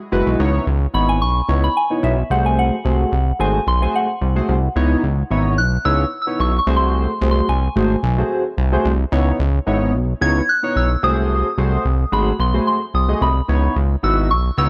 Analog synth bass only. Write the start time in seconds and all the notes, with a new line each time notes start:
0.12 F#1
0.27 B1
0.39 C#2
0.67 C#2
0.94 G#1
1.21 B1
1.49 C#2
2.03 B1
2.30 C2
2.85 C2
3.12 C2
3.40 G#1
3.67 B1
4.21 C2
4.49 C2
4.76 C#2
5.03 C#2
5.31 G#1
5.58 B1
5.85 C#2
6.40 B1
6.67 C2
7.21 C2
7.49 C2
7.76 G#1
8.03 B1
8.58 C2
8.85 C2
9.12 C#2
9.39 C#2
9.67 G#1
9.94 B1
10.21 C#2
10.76 B1
11.03 C2
11.58 C2
11.85 C2
12.12 G#1
12.39 B1
12.94 C2
13.21 C2
13.49 C#2
13.76 C#2
14.03 G#1
14.31 B1
14.58 C#2